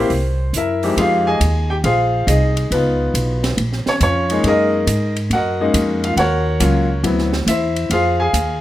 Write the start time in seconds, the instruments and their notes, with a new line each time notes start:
Already playing: upright piano C5
0.10 upright bass C2, kick, open hi-hat
0.53 upright bass F#2, upright piano E4 A#4, closed hi-hat
0.57 upright piano E5
0.83 upright piano F2 G#3 C4 D#4 G4, open hi-hat
0.97 upright bass F2, upright piano F4 G#4 C5 F5, kick, ride
1.27 upright piano G#4 D#5 G#5
1.40 upright bass D#2, kick, hi-hat pedal, ride
1.70 upright piano G4 G5
1.84 upright bass A#1, upright piano F4 G#4 C5 F5, kick, ride
2.27 upright bass C2, upright piano D#4 G#4 D#5, kick, hi-hat pedal, ride
2.57 ride
2.71 upright bass C#2, upright piano B3 D#4 F4 B4, kick, ride
3.14 upright bass B1, kick, hi-hat pedal, ride
3.44 snare, ride
3.57 upright bass A#1, kick, ride
3.72 snare
3.86 upright piano C#5, muted upright bass stroke, snare
3.90 upright piano C#4
4.01 upright bass F2, upright piano C#4 F4 C#5, kick, hi-hat pedal, ride
4.30 upright piano G#3 A#3 C#4 D#4, ride
4.44 upright bass F#2, upright piano D#4 G#4 A#4, kick, ride
4.48 upright piano D#5
4.87 upright bass G#2, kick, hi-hat pedal, ride
5.16 ride
5.30 upright bass F#2, upright piano F#5, kick, ride
5.34 upright piano F#4 A#4 D#5
5.61 upright piano G#3 A#3 C#4 D#4
5.74 upright bass F2, kick, hi-hat pedal, ride
6.04 upright piano F4 F5, ride
6.14 upright bass D#2, upright piano F5 F#5, kick, ride
6.19 upright piano F#4 A#4 C#5
6.60 upright bass C#2, upright piano F#3 A#3 C#4 F4, kick, hi-hat pedal, ride
7.03 upright bass D2, upright piano F#3 B3 C4 E4, kick, ride
7.18 snare
7.33 snare
7.47 upright bass E2, upright piano E4 C5 E5, kick, hi-hat pedal, ride
7.76 ride
7.90 upright bass F2, upright piano F4 G#4 C5 F5, kick, ride
8.20 upright piano G#4 F5 G#5
8.33 upright bass D#2, kick, hi-hat pedal, ride